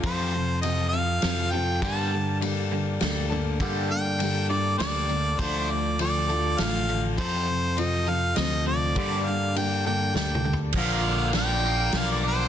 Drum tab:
CC |---------|---------|---------|---------|
RD |x--x--x--|x--x--x--|x--x--x--|x--x--x--|
SD |------o--|------o--|------o--|------o--|
T2 |---------|---------|---------|---------|
FT |---------|---------|---------|---------|
BD |o--------|o--------|o--------|o--------|

CC |---------|---------|x--------|
RD |x--x--x--|x--x-----|---x--x--|
SD |------o--|------o--|---o--o--|
T2 |---------|-------o-|---------|
FT |---------|--------o|---------|
BD |o--------|o--------|o--------|